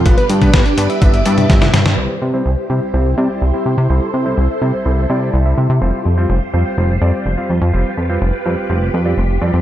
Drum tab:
CC |----------------|x---------------|----------------|----------------|
HH |xxxxxxxxxxxxxxxx|----------------|----------------|----------------|
SD |----o-------oooo|----------------|----------------|----------------|
T1 |---o-------o-oo-|----------------|----------------|----------------|
BD |o--oo---o---o---|----------------|----------------|----------------|

CC |----------------|
HH |----------------|
SD |----------------|
T1 |----------------|
BD |----------------|